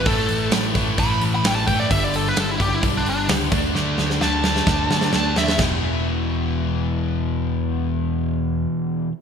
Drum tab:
CC |----------------|----------------|----------------|x---------------|
HH |o-o-o-o-o-o-o-o-|o-o-o-o-o-o-o-o-|----------------|----------------|
SD |----o-------o---|----o-------o---|o-ooo-ooo-ooo-oo|o---------------|
BD |o-----o-o-----o-|o-----o-o-----o-|--------o-------|o---------------|

CC |----------------|
HH |----------------|
SD |----------------|
BD |----------------|